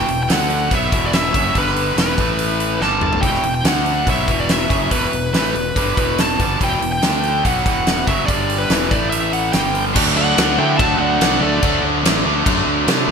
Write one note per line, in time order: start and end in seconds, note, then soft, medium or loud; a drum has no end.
0.00 0.22 G5 loud
0.08 0.28 E1 medium
0.08 0.25 E2 medium
0.08 0.25 B2 medium
0.08 open hi-hat medium
0.23 0.27 G5 medium
0.29 0.68 D2 medium
0.29 0.71 D3 medium
0.29 0.71 A3 loud
0.29 0.71 D4 loud
0.29 0.70 F#5 medium
0.29 snare loud
0.29 open hi-hat medium
0.50 open hi-hat soft
0.71 0.91 B1 medium
0.71 0.92 B2 loud
0.71 0.92 F#3 loud
0.71 0.92 B3 loud
0.71 1.05 E5 medium
0.71 kick loud
0.71 open hi-hat medium
0.92 1.31 E1 medium
0.92 1.33 E2 medium
0.92 1.34 B2 loud
0.92 1.34 E3 loud
0.92 kick loud
0.92 open hi-hat medium
1.06 1.14 D5 medium
1.13 1.57 E5 medium
1.13 snare loud
1.13 open hi-hat medium
1.34 1.54 F#1 medium
1.34 1.54 F#2 medium
1.34 1.54 C#3 medium
1.34 1.55 F#3 loud
1.34 kick loud
1.34 open hi-hat medium
1.54 1.94 G1 loud
1.54 1.96 G2 medium
1.54 1.96 D3 loud
1.54 1.97 G3 medium
1.54 1.98 B4 medium
1.54 kick medium
1.54 open hi-hat medium
1.67 snare soft
1.76 open hi-hat medium
1.96 2.16 E1 medium
1.96 2.17 E2 medium
1.96 2.17 B2 medium
1.96 2.16 E3 medium
1.96 2.85 B4 medium
1.96 snare loud
1.96 open hi-hat medium
2.17 2.77 A1 medium
2.17 2.80 A2 medium
2.17 2.80 E3 medium
2.17 2.81 A3 medium
2.17 kick medium
2.17 open hi-hat soft
2.39 open hi-hat medium
2.60 open hi-hat medium
2.80 3.20 G1 medium
2.80 3.21 G2 medium
2.80 3.21 D3 medium
2.80 3.22 G3 medium
2.80 3.21 A5 medium
2.80 snare soft
3.01 mid tom medium
3.13 floor tom medium
3.21 3.42 E1 medium
3.21 3.42 E2 medium
3.21 3.42 B2 medium
3.21 3.43 E3 loud
3.21 3.53 G5 medium
3.21 kick medium
3.21 open hi-hat medium
3.34 snare soft
3.43 3.63 E1 medium
3.43 3.61 E2 medium
3.43 3.61 B2 medium
3.43 open hi-hat soft
3.55 3.64 G5 medium
3.64 4.04 D2 medium
3.64 4.06 D3 medium
3.64 4.06 A3 medium
3.64 4.07 D4 loud
3.64 4.05 F#5 medium
3.64 snare loud
3.64 open hi-hat medium
3.77 snare soft
3.86 open hi-hat soft
4.07 4.27 B1 medium
4.07 4.25 B2 medium
4.07 4.27 F#3 medium
4.07 4.28 B3 loud
4.07 4.38 E5 medium
4.07 kick loud
4.07 open hi-hat medium
4.26 4.67 E1 medium
4.26 4.67 E2 medium
4.26 4.69 B2 medium
4.26 4.69 E3 loud
4.26 kick medium
4.26 open hi-hat medium
4.40 4.50 D5 medium
4.49 4.90 E5 medium
4.49 snare loud
4.49 open hi-hat medium
4.68 4.90 F#1 medium
4.68 4.89 F#2 medium
4.68 4.90 C#3 loud
4.68 4.90 F#3 loud
4.68 kick loud
4.68 open hi-hat soft
4.90 5.11 E1 loud
4.90 5.11 E2 loud
4.90 5.11 B2 medium
4.90 5.12 E3 loud
4.90 5.33 B4 medium
4.90 kick medium
4.90 open hi-hat medium
5.12 5.32 E1 medium
5.12 5.29 E2 medium
5.12 5.29 B2 medium
5.12 open hi-hat medium
5.33 5.53 A1 medium
5.33 5.54 A2 medium
5.33 5.54 E3 loud
5.33 5.54 A3 loud
5.33 6.20 B4 medium
5.33 snare loud
5.33 open hi-hat medium
5.54 5.74 E1 medium
5.54 5.71 E2 medium
5.54 5.71 B2 medium
5.54 open hi-hat soft
5.75 5.95 G1 medium
5.75 5.95 G2 medium
5.75 5.96 D3 loud
5.75 5.96 G3 loud
5.75 kick loud
5.75 open hi-hat medium
5.96 6.36 E1 medium
5.96 6.38 E2 medium
5.96 6.38 B2 loud
5.96 6.38 E3 loud
5.96 kick loud
5.96 open hi-hat medium
6.18 6.58 A5 medium
6.18 snare loud
6.18 open hi-hat medium
6.38 6.59 G1 medium
6.38 6.59 G2 medium
6.38 6.59 D3 loud
6.38 6.59 G3 loud
6.38 kick loud
6.38 open hi-hat medium
6.60 6.80 E1 loud
6.60 6.79 E2 medium
6.60 6.80 B2 loud
6.60 6.81 E3 medium
6.60 6.91 G5 medium
6.60 kick medium
6.60 open hi-hat medium
6.81 7.01 E1 medium
6.81 6.97 E2 medium
6.81 6.98 B2 medium
6.81 open hi-hat soft
6.92 7.45 G5 medium
7.02 7.41 D2 medium
7.02 7.43 D3 medium
7.02 7.44 A3 medium
7.02 7.44 D4 medium
7.02 snare loud
7.02 open hi-hat medium
7.23 open hi-hat soft
7.44 7.64 B1 loud
7.44 7.63 B2 medium
7.44 7.64 F#3 loud
7.44 7.65 B3 medium
7.44 8.10 F#5 medium
7.44 kick loud
7.44 open hi-hat medium
7.64 8.04 E1 medium
7.64 8.05 E2 medium
7.64 8.05 B2 medium
7.64 8.06 E3 loud
7.64 kick loud
7.64 open hi-hat soft
7.87 snare loud
7.87 open hi-hat medium
8.05 8.26 F#1 medium
8.05 8.26 F#2 medium
8.05 8.27 C#3 medium
8.05 8.27 F#3 loud
8.05 8.26 E5 medium
8.05 kick medium
8.05 open hi-hat medium
8.26 8.67 G1 medium
8.26 8.69 G2 medium
8.26 8.69 D3 medium
8.26 8.69 G3 loud
8.26 8.56 D5 medium
8.26 kick loud
8.26 open hi-hat medium
8.49 open hi-hat medium
8.58 8.91 B4 medium
8.69 8.89 E1 medium
8.69 8.90 E2 medium
8.69 8.89 B2 medium
8.69 8.89 E3 medium
8.69 snare loud
8.69 open hi-hat medium
8.90 9.50 A1 medium
8.90 9.52 A2 medium
8.90 9.53 E3 medium
8.90 9.53 A3 medium
8.90 9.10 D5 medium
8.90 kick loud
8.90 open hi-hat soft
9.10 9.30 E5 medium
9.10 open hi-hat medium
9.33 9.53 F#5 medium
9.33 open hi-hat medium
9.53 9.93 G1 medium
9.53 9.94 G2 medium
9.53 9.92 D3 medium
9.53 9.93 G3 medium
9.53 9.83 G5 medium
9.53 snare loud
9.53 open hi-hat medium
9.75 open hi-hat soft
9.93 10.35 D2 loud
9.93 10.34 D3 loud
9.93 10.60 F#3 medium
9.93 10.35 A3 loud
9.93 10.35 D4 medium
9.93 kick loud
9.93 crash loud
9.93 crash medium
10.17 10.56 D4 medium
10.17 10.59 F#5 medium
10.35 10.57 D2 medium
10.35 10.56 D3 medium
10.35 10.56 A3 medium
10.35 10.56 D4 loud
10.35 snare loud
10.35 crash medium
10.56 10.75 D3 medium
10.56 10.78 D3 medium
10.56 10.76 A3 medium
10.56 10.76 D4 medium
10.56 10.78 E4 medium
10.56 10.77 G5 medium
10.60 11.60 D3 medium
10.60 11.61 F#3 medium
10.76 10.98 D2 loud
10.76 11.17 D3 loud
10.76 11.18 A3 loud
10.76 11.18 D4 loud
10.76 10.99 A5 loud
10.76 kick loud
10.76 crash medium
10.81 11.00 F#4 medium
10.99 11.19 D2 medium
10.99 11.39 D4 loud
10.99 11.43 F#5 loud
11.18 11.40 C2 medium
11.18 11.38 D3 medium
11.18 11.38 A3 medium
11.18 11.39 D4 medium
11.18 snare loud
11.18 crash medium
11.39 11.61 D2 loud
11.39 11.59 D3 medium
11.39 11.59 A3 medium
11.39 11.81 A3 medium
11.39 11.60 D4 loud
11.39 11.80 D5 medium
11.60 11.82 D2 loud
11.60 12.01 D3 medium
11.60 12.24 F#3 medium
11.60 12.01 A3 loud
11.60 12.02 D4 loud
11.60 kick loud
11.60 crash medium
11.83 12.03 D2 medium
12.02 12.23 A1 medium
12.02 12.21 D3 medium
12.02 12.22 A3 loud
12.02 12.23 D4 loud
12.02 crash medium
12.06 snare loud
12.22 12.44 D2 medium
12.22 12.42 D3 medium
12.22 12.42 A3 medium
12.22 12.43 D4 medium
12.28 13.11 D3 medium
12.28 13.11 F#3 medium
12.43 12.66 F#2 loud
12.43 12.84 D3 loud
12.43 12.85 A3 loud
12.43 12.85 D4 loud
12.43 kick loud
12.43 crash medium
12.67 12.86 D2 medium
12.85 13.07 C3 medium
12.85 13.04 D3 medium
12.85 13.05 A3 medium
12.85 13.05 D4 medium
12.85 snare loud
12.85 crash medium
13.05 13.11 D2 medium
13.05 13.11 D3 medium
13.05 13.11 A3 loud
13.05 13.11 D4 loud